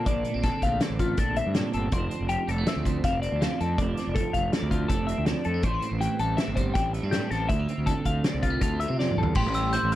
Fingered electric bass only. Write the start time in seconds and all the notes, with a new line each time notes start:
0.07 A#1
0.35 A#1
0.62 A#1
0.90 A1
1.18 A#1
1.47 G2
1.74 G1
1.92 F1
2.20 F1
2.48 F1
2.76 D2
3.04 F1
3.32 D2
3.61 F2
3.78 F1
4.07 F1
4.34 F1
4.62 D2
4.90 F1
5.18 D2
5.46 F2
5.64 A1
5.91 A1
6.19 A1
6.48 G1
6.75 A1
7.03 G2
7.31 A1
7.50 D2
7.78 D2
8.05 D2
8.34 C2
8.62 D2
8.90 C3
9.17 E2
9.36 A1
9.46 A1
9.83 A1